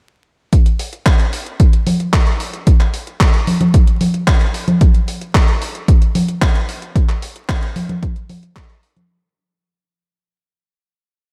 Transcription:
0.53 kick, closed hi-hat
0.66 closed hi-hat
0.79 open hi-hat
0.93 closed hi-hat
1.06 kick, clap, closed hi-hat
1.20 closed hi-hat
1.33 open hi-hat
1.46 closed hi-hat
1.60 kick, closed hi-hat
1.73 closed hi-hat
1.86 open hi-hat, high conga
2.00 closed hi-hat
2.13 kick, clap, closed hi-hat
2.27 closed hi-hat
2.40 open hi-hat
2.54 closed hi-hat
2.67 kick, closed hi-hat
2.80 clap, closed hi-hat
2.94 open hi-hat
3.07 closed hi-hat
3.20 kick, clap, closed hi-hat
3.34 closed hi-hat
3.47 open hi-hat, high conga
3.61 closed hi-hat, high conga
3.74 kick, closed hi-hat
3.87 closed hi-hat
4.01 open hi-hat, high conga
4.14 closed hi-hat
4.27 kick, clap, closed hi-hat
4.41 closed hi-hat
4.54 open hi-hat
4.68 closed hi-hat, high conga
4.81 kick, closed hi-hat
4.95 closed hi-hat
5.08 open hi-hat
5.21 closed hi-hat
5.35 kick, clap, closed hi-hat
5.48 closed hi-hat
5.62 open hi-hat
5.75 closed hi-hat
5.88 kick, closed hi-hat
6.02 closed hi-hat
6.15 open hi-hat, high conga
6.29 closed hi-hat
6.42 kick, clap, closed hi-hat
6.55 closed hi-hat
6.69 open hi-hat
6.82 closed hi-hat
6.96 kick, closed hi-hat
7.09 clap, closed hi-hat
7.22 open hi-hat
7.36 closed hi-hat
7.49 kick, clap, closed hi-hat
7.62 closed hi-hat
7.76 open hi-hat, high conga
7.89 closed hi-hat, high conga
8.03 kick, closed hi-hat
8.16 closed hi-hat
8.29 open hi-hat, high conga
8.43 closed hi-hat
8.56 kick, clap, closed hi-hat
8.70 closed hi-hat
8.83 open hi-hat
8.96 closed hi-hat, high conga

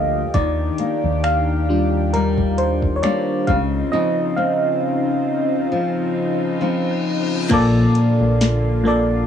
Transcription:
Already playing: D2 F3 G3 A#3 F4 G4 A4 D#5 F5
0.34 D#2 D#3 D4 D5, kick, closed hi-hat
0.78 A#3, closed hi-hat
1.04 D#2
1.24 F5, finger snap, closed hi-hat
1.69 G3 D4 F4
2.13 G3 A#4, closed hi-hat
2.38 kick
2.58 C5, closed hi-hat
2.82 kick
2.96 C#5
3.03 G3 A#3 D4 D5, finger snap, closed hi-hat
3.47 C#2 C#3 C4 D#4 F4 F5, kick, closed hi-hat
3.92 C#3 F3 C4 D#4 D#5
4.36 C4 F5
5.71 F3, reverse cymbal
6.61 F3 C4 D#4
7.50 A#1 A#2 D3 A#3 F4 A4, kick, closed hi-hat, crash
7.54 D5
7.95 closed hi-hat
8.20 A#1
8.41 snare, closed hi-hat
8.84 A#2 A#3 A4 D5

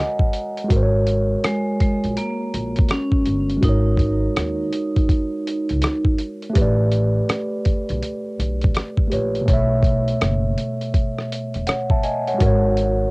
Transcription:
Already playing: G#3 F#4 A#4 C#5 D#5 F#5 G#5 A#5
0.19 kick
0.33 closed hi-hat
0.57 closed hi-hat
0.64 G#3
0.68 G#1 F#4 A#4, kick, closed hi-hat
0.76 C5
0.83 C#5
1.07 closed hi-hat
1.44 G#3, cross-stick, closed hi-hat
1.80 G#3, kick, closed hi-hat
2.04 A#1, closed hi-hat
2.17 A#3, closed hi-hat
2.54 A#1, closed hi-hat
2.76 kick, closed hi-hat
2.89 C#4, cross-stick, closed hi-hat
3.12 kick
3.26 G1, closed hi-hat
3.50 closed hi-hat
3.57 G#3
3.61 G#1 D#4 F#4 A#4, kick, closed hi-hat
3.69 C#5
3.97 kick, closed hi-hat
4.36 D#2, cross-stick, closed hi-hat
4.73 closed hi-hat
4.96 kick, closed hi-hat
5.09 kick, closed hi-hat
5.47 closed hi-hat
5.69 C#2, closed hi-hat
5.82 cross-stick, closed hi-hat
6.05 kick
6.18 closed hi-hat
6.42 closed hi-hat
6.50 A3 G4
6.55 A1 B4, kick, closed hi-hat
6.62 D5
6.92 closed hi-hat
7.29 cross-stick, closed hi-hat
7.65 kick, closed hi-hat
7.89 B1, closed hi-hat
8.03 closed hi-hat
8.39 B1, closed hi-hat
8.61 kick, closed hi-hat
8.74 cross-stick, closed hi-hat
8.97 kick
9.08 A3 G4, closed hi-hat
9.12 A#1 B4 C#5
9.35 closed hi-hat
9.41 B2
9.46 B1 A3 C#5, kick, closed hi-hat
9.53 E5
9.83 kick, closed hi-hat
10.08 closed hi-hat
10.21 F#1, cross-stick, closed hi-hat
10.58 closed hi-hat
10.81 closed hi-hat
10.94 kick, closed hi-hat
11.19 cross-stick
11.32 closed hi-hat
11.54 E1, closed hi-hat
11.67 C#5 F#5, cross-stick, closed hi-hat
11.90 E5 A5, kick
12.03 D#5 G#5, closed hi-hat
12.27 C#5 F#5, closed hi-hat
12.34 G#3
12.38 G#1 F#4 A#4, kick, closed hi-hat
12.46 C#5
12.77 closed hi-hat

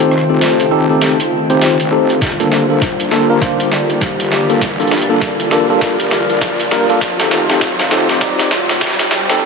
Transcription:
Already playing: D#3 A3 C4 F4 C5 G5 A5, riser
0.00 C4 D#4 G4 A4
0.11 F2, cross-stick
0.18 cross-stick
0.21 cross-stick
0.30 F1 C4 D#4 G4 A4
0.41 A1, snare, closed hi-hat
0.60 closed hi-hat
0.71 C4 D#4 G4 A4
0.90 C4 D#4 G4 A4
1.01 snare, closed hi-hat
1.20 closed hi-hat
1.50 F1 C4 D#4 G4 C5, closed hi-hat
1.61 snare, closed hi-hat
1.80 A1, closed hi-hat
1.92 C4 D#4 G4 A4
2.10 closed hi-hat
2.21 G1 D3 G3 A#3 G4, kick, snare, closed hi-hat
2.40 A#3 D4 F4 A4, closed hi-hat
2.52 snare
2.70 C2 A#3 D4 F4 A4
2.81 D5, kick, snare, closed hi-hat
3.00 closed hi-hat
3.11 C2 A#3 D4 F4 A4, snare
3.30 A#3 D4 F4 A#4
3.41 A#3 D4 F4, kick, snare, closed hi-hat
3.60 closed hi-hat
3.72 snare
3.90 closed hi-hat
4.01 kick, snare, closed hi-hat
4.20 G1, closed hi-hat
4.32 snare
4.37 A#4
4.50 A#3 D4 F4 A4, closed hi-hat
4.61 F1, kick, snare, closed hi-hat
4.80 A#3 D4 F4 A4, closed hi-hat
4.81 closed hi-hat
4.87 G2, closed hi-hat
4.91 snare, closed hi-hat
4.98 closed hi-hat
5.01 closed hi-hat
5.10 G1 A#3 D4 F4 A4
5.21 kick, snare, closed hi-hat
5.40 closed hi-hat
5.51 A#3 D4 F4 A4, snare
5.70 A#3 D4 F4 A4
5.81 A#1, kick, snare, closed hi-hat
6.00 G1, closed hi-hat
6.11 snare
6.30 closed hi-hat
6.41 G2, kick, snare, closed hi-hat
6.60 closed hi-hat
6.71 A#3 D4 F4 A#4, snare
6.90 A#3 D4 F4 A4, closed hi-hat
7.01 F1 D#3 A3 C4 F4, kick, snare, closed hi-hat
7.20 C4 D#4 G4 A4, snare, closed hi-hat
7.31 snare
7.50 A1 C4 D#4 G4 A4, snare
7.61 kick, snare, closed hi-hat
7.79 snare, closed hi-hat
7.88 C4 D#4 G4 A4 C5, snare
8.09 C4 D#4 G4 C5, snare
8.21 C4 D#4 G4 D5, kick, snare, closed hi-hat
8.39 snare, closed hi-hat
8.51 snare
8.69 snare, closed hi-hat
8.81 kick, snare, closed hi-hat
8.84 snare
8.87 snare
8.90 snare
8.96 snare
8.99 F1, snare, closed hi-hat
9.11 snare
9.30 C4 D#4 G4 A4, snare, closed hi-hat

